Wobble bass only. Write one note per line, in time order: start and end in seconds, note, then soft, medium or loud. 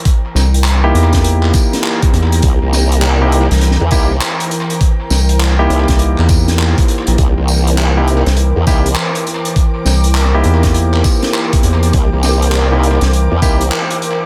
2.43 2.59 C2 loud
2.62 3.48 C2 loud
3.81 3.90 E2 medium
3.92 4.20 C2 loud
5.70 5.86 C2 loud
7.18 7.34 C2 loud
7.37 8.23 C2 loud
8.56 8.65 E2 medium
8.67 8.95 C2 medium
11.93 12.09 C2 loud
12.13 12.99 C2 loud
13.32 13.40 E2 medium
13.42 13.70 C2 loud